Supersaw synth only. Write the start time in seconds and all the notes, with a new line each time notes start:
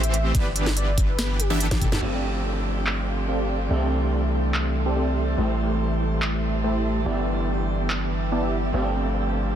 Already playing: E3 A3 C4 G4 C5
0.35 E3 B3 G4
1.50 E3 B3 D4 G4 E5
1.60 E3 B3 D4 G4 A4
2.02 C4 G4 A4 D5 F5
3.28 C4 G4 A4 D5 F5
3.70 C4 G4 A4 D5 E5
4.86 C4 G4 A4 D5 A5
4.96 C4 G4 A4 D5 E5
5.38 A3 E4 G4 C5 E5
6.64 A3 E4 G4 C5 E5
7.06 B3 E4 G4 D5 E5
8.32 B3 E4 G4 D5 A5
8.43 B3 E4 G4 D5 E5
8.74 C4 G4 A4 D5 F5